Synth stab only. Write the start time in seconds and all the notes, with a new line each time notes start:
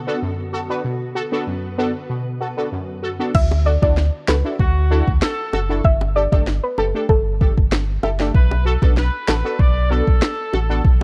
0.07 B3 D4 F#4 A4
0.22 F#2
0.53 F#4 A4
0.69 B3 D4 F#4 B4
0.84 B2
1.15 F#4 A4
1.32 B3 D4 F#4 A4
1.47 F#2
1.78 B3 D4 F#4 A4
2.10 B2
2.40 F#4 A4
2.57 B3 D4 F#4 A4
2.72 F#2
3.03 F#4 A4
3.19 B3 D4 F#4 A4
3.65 F#4 A4
3.82 D4 E4 F#4 A4
4.28 F#4 A4
4.45 D4 E4 F#4 A4
4.90 D4 E4 F#4 A4
5.53 F#4 A4
5.69 D4 E4 F#4 A4
6.15 G4 A4
6.32 A3 D4 G4 A4
6.78 G4 A4
6.95 A3 D4 G4 A4
7.40 A3 D4 G4 A4
8.03 G4 A4
8.20 A3 D4 G4 A4
8.65 F#4 A4
8.82 B3 D4 F#4 A4
9.28 F#4 A4
9.44 B3 D4 F#4 A4
9.90 B3 D4 F#4 A4
10.53 F#4 A4
10.69 B3 D4 F#4 A4